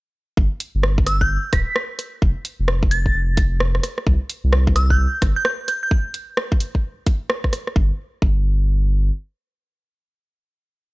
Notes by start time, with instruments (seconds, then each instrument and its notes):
0.37 sub bass G1, kick
0.60 open hi-hat
0.75 sub bass G1
0.83 cross-stick
0.98 kick
1.06 synth bell E6, cross-stick, open hi-hat
1.21 synth bell G6, kick
1.53 sub bass D1, synth bell B6, kick, cross-stick, open hi-hat
1.76 cross-stick
1.99 cross-stick, open hi-hat
2.22 sub bass F1, kick
2.45 open hi-hat
2.60 sub bass F1
2.68 cross-stick
2.83 kick
2.91 synth bell A6, open hi-hat
3.06 kick
3.14 sub bass F1
3.37 kick, open hi-hat
3.60 cross-stick
3.75 cross-stick
3.83 cross-stick, open hi-hat
3.98 cross-stick
4.07 sub bass C2, kick
4.30 open hi-hat
4.44 sub bass C2
4.53 cross-stick
4.67 kick
4.76 synth bell E6, cross-stick, open hi-hat
4.90 synth bell G6, kick
5.22 sub bass G1, kick, cross-stick, open hi-hat
5.36 synth bell G6
5.45 synth bell G6, cross-stick
5.68 synth bell G6, cross-stick, open hi-hat
5.83 synth bell G6
5.91 kick
6.14 open hi-hat
6.37 cross-stick
6.52 kick
6.60 open hi-hat
6.75 kick
7.07 kick, open hi-hat
7.30 cross-stick
7.44 kick, cross-stick
7.53 cross-stick, open hi-hat
7.67 cross-stick
7.76 sub bass G1, kick
8.22 sub bass G1, kick